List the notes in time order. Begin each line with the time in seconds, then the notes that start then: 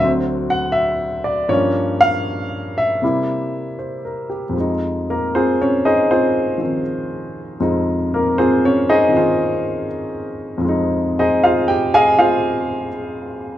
Already playing: D2 D3
0.00 F#3 E5
0.04 C4
0.50 F#5
0.72 E5
1.24 D5
1.49 G2 F3 A#3 C#5
1.53 C#4
2.01 F5
2.78 E5
3.02 C3 G3 A#3 E4
3.79 C5
4.05 A#4
4.30 G4
4.49 F2 F3
4.57 G#3 D#4
5.10 A#3 A#4
5.35 C4 F4 G#4 C5
5.61 C#4 C#5
5.85 D#4 G#4 C5 D#5
6.11 C4 F4 G#4 C5
6.58 D#3 F3 C4
7.60 F2 F3 G#3 D#4
8.14 A#3 A#4
8.38 C4 F4 G#4 C5
8.65 C#4 C#5
8.89 D#4 G#4 C5 D#5
9.09 D#3 C4 F4
9.17 C4 F4 G#4 C5
10.58 F2 F3
10.64 G#3
10.69 D#4
11.19 D#4 G#4 C5 D#5
11.44 F4 G#4 C5 F5
11.68 G4 G5
11.94 G#4 D#5 F5 G#5
12.19 F4 G#4 C5 F5